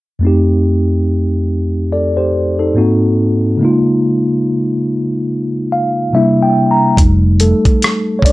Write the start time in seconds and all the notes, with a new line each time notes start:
0.19 F2 A3 C4
0.25 D#4 G4
1.92 A4 D5
2.17 G4 C5
2.59 D#4 A4
2.75 G#2 A#3 C4 D#4 F#4
3.57 C#3 G#3 A#3
3.63 D#4 F4
5.72 F5
6.13 C3 G3 A#3 D4 E4 E5
6.42 G5
6.71 A#5
6.97 F1 G3 A3 D#4, kick, closed hi-hat
7.40 A3 A4, closed hi-hat
7.65 muted fingered electric bass stroke, kick, closed hi-hat
7.82 cross-stick, closed hi-hat
8.19 C#5, kick
8.25 D4 D5, closed hi-hat